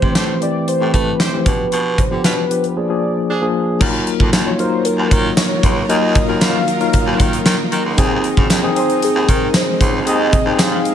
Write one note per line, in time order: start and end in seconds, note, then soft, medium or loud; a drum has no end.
0.00 0.12 C3 medium
0.00 0.02 E3 medium
0.00 0.31 E3 medium
0.00 0.02 A3 medium
0.00 0.32 A3 medium
0.00 0.03 C4 medium
0.00 0.32 C4 medium
0.00 0.03 G4 medium
0.00 0.32 G4 medium
0.00 0.12 C5 loud
0.00 kick medium
0.15 0.35 A2 medium
0.15 0.24 A3 medium
0.15 0.24 G4 medium
0.15 0.24 C5 loud
0.15 0.40 C5 loud
0.15 snare loud
0.15 closed hi-hat medium
0.41 0.70 E3 medium
0.41 0.71 A3 medium
0.41 0.71 C4 medium
0.41 0.71 G4 medium
0.41 0.70 D5 loud
0.41 closed hi-hat medium
0.68 0.94 C5 loud
0.68 closed hi-hat medium
0.81 0.91 A2 medium
0.81 1.20 E3 medium
0.81 1.20 A3 medium
0.81 1.20 C4 medium
0.81 1.20 G4 medium
0.94 1.13 A3 medium
0.94 1.23 B4 loud
0.94 kick medium
0.94 closed hi-hat medium
1.20 1.36 A3 medium
1.20 1.36 G4 medium
1.20 1.36 C5 medium
1.20 1.49 C5 medium
1.20 snare loud
1.20 closed hi-hat medium
1.33 1.46 E3 medium
1.33 1.46 A3 medium
1.33 1.46 C4 medium
1.33 1.45 G4 medium
1.45 1.65 B2 medium
1.45 1.98 F3 medium
1.45 1.98 B3 medium
1.45 1.98 D4 medium
1.45 1.98 G4 medium
1.45 2.01 B4 loud
1.45 kick loud
1.45 closed hi-hat medium
1.72 2.01 B2 loud
1.72 closed hi-hat medium
1.98 2.25 C5 medium
1.98 kick medium
1.98 closed hi-hat medium
2.11 2.21 D3 medium
2.11 2.40 F3 medium
2.11 2.40 B3 medium
2.11 2.41 D4 medium
2.11 2.41 G4 medium
2.24 2.44 B2 medium
2.24 2.33 G3 medium
2.24 2.33 F4 medium
2.24 2.33 B4 loud
2.24 2.79 B4 medium
2.24 snare loud
2.24 closed hi-hat medium
2.50 2.75 F3 medium
2.50 2.76 B3 medium
2.50 2.75 D4 medium
2.50 2.77 G4 medium
2.50 closed hi-hat medium
2.64 closed hi-hat soft
2.76 2.87 F3 medium
2.76 2.87 A#3 medium
2.76 2.87 D4 medium
2.76 2.87 G#4 medium
2.76 3.55 D5 medium
2.89 3.28 F3 medium
2.89 3.28 A#3 medium
2.89 3.28 D4 medium
2.89 3.29 G#4 medium
3.29 3.45 F3 medium
3.29 3.45 D4 medium
3.29 3.45 G#4 medium
3.42 3.71 F3 medium
3.42 3.71 A#3 medium
3.42 3.71 D4 medium
3.42 3.71 G#4 medium
3.80 4.10 D#2 loud
3.80 7.94 D#3 medium
3.80 4.29 F#3 loud
3.80 7.94 F#3 medium
3.80 4.29 A#3 medium
3.80 10.95 D#4 medium
3.80 4.29 D#4 medium
3.80 7.94 F4 medium
3.80 4.30 F4 medium
3.80 7.94 A#4 medium
3.80 4.30 A#4 loud
3.80 kick loud
3.80 crash loud
4.07 closed hi-hat medium
4.20 4.30 F2 medium
4.20 kick medium
4.32 4.52 D#2 medium
4.32 snare loud
4.32 clap medium
4.32 closed hi-hat medium
4.32 tambourine medium
4.46 4.56 F#3 medium
4.46 4.56 A#3 medium
4.46 4.56 D#4 medium
4.46 4.56 F4 medium
4.46 4.56 C#5 medium
4.59 5.37 F#3 medium
4.59 5.37 A#3 medium
4.59 5.37 D#4 medium
4.59 5.37 F4 medium
4.59 5.37 A#4 medium
4.59 4.87 C5 medium
4.59 closed hi-hat medium
4.85 5.36 A#4 medium
4.85 closed hi-hat medium
4.98 5.12 D#2 loud
5.11 5.31 D#3 loud
5.11 kick loud
5.11 closed hi-hat medium
5.37 5.86 C#5 loud
5.37 snare loud
5.37 clap medium
5.37 closed hi-hat medium
5.37 tambourine medium
5.63 5.83 C#2 medium
5.63 kick medium
5.63 closed hi-hat medium
5.89 6.19 D#2 loud
5.89 6.18 F#3 medium
5.89 6.18 A#3 medium
5.89 6.18 D#4 medium
5.89 6.19 F4 medium
5.89 6.19 A#4 medium
5.89 6.38 D#5 loud
5.89 closed hi-hat medium
6.15 kick loud
6.15 closed hi-hat medium
6.28 6.38 D#2 medium
6.28 6.67 F#3 medium
6.28 6.67 A#3 medium
6.28 6.67 D#4 medium
6.28 6.68 F4 medium
6.28 6.68 A#4 medium
6.41 6.61 F#2 medium
6.41 7.68 F5 loud
6.41 snare loud
6.41 clap medium
6.41 closed hi-hat medium
6.41 tambourine medium
6.68 closed hi-hat medium
6.80 7.58 F#3 medium
6.80 7.58 A#3 medium
6.80 7.58 D#4 medium
6.80 7.59 F4 medium
6.80 7.59 A#4 medium
6.80 closed hi-hat soft
6.93 kick medium
6.93 closed hi-hat medium
7.07 7.21 D#2 loud
7.20 7.39 D#3 medium
7.20 kick loud
7.20 closed hi-hat medium
7.33 closed hi-hat medium
7.46 7.56 D#3 loud
7.46 snare loud
7.46 clap medium
7.46 closed hi-hat medium
7.46 tambourine medium
7.72 7.82 D#3 medium
7.72 closed hi-hat medium
7.85 7.95 C#2 medium
7.97 8.27 D#2 loud
7.97 10.95 G#3 medium
7.97 8.46 C4 medium
7.97 10.95 C4 medium
7.97 8.47 D#4 medium
7.97 8.47 G#4 loud
7.97 kick loud
7.97 closed hi-hat medium
8.24 closed hi-hat medium
8.37 8.47 F#2 loud
8.37 kick loud
8.50 8.70 D#2 medium
8.50 snare loud
8.50 clap medium
8.50 closed hi-hat loud
8.50 tambourine medium
8.63 8.73 C4 medium
8.63 8.73 D#4 medium
8.63 8.73 G#4 medium
8.76 9.54 C4 medium
8.76 9.54 D#4 medium
8.76 9.55 G#4 medium
8.76 9.06 C5 medium
8.76 closed hi-hat medium
8.90 closed hi-hat soft
9.02 9.31 G#4 medium
9.02 closed hi-hat loud
9.15 9.25 D#2 loud
9.29 9.48 D#3 loud
9.29 9.57 A#4 loud
9.29 kick medium
9.29 closed hi-hat medium
9.54 10.07 C5 loud
9.54 snare loud
9.54 clap medium
9.54 closed hi-hat medium
9.54 tambourine medium
9.81 10.08 C#2 loud
9.81 kick medium
9.81 closed hi-hat medium
10.06 10.36 D#2 loud
10.06 10.36 C4 medium
10.06 10.36 D#4 medium
10.06 10.36 G#4 medium
10.06 10.32 D#5 loud
10.06 closed hi-hat medium
10.33 10.58 D#5 loud
10.33 kick loud
10.33 closed hi-hat medium
10.45 10.61 D#2 loud
10.45 10.85 C4 medium
10.45 10.85 D#4 medium
10.45 10.52 G4 medium
10.53 10.88 G#4 medium
10.59 10.79 G#2 medium
10.59 10.95 F5 loud
10.59 snare loud
10.59 clap medium
10.59 closed hi-hat medium
10.59 tambourine medium
10.85 closed hi-hat medium